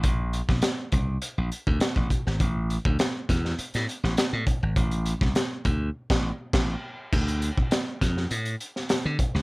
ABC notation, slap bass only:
X:1
M:4/4
L:1/16
Q:1/4=102
K:Dm
V:1 name="Slap bass" clef=bass
B,,,3 B,,, z2 C,,2 z B,,, z D,, z A,,, z ^G,,, | A,,,3 D,, z2 E,,2 z A,, z A,,, z A,, z ^G,,, | A,,,3 C,, z2 D,,2 z A,,,2 z A,,,2 z2 | D,,3 z3 F,,2 A,,2 z3 D, z ^C,, |]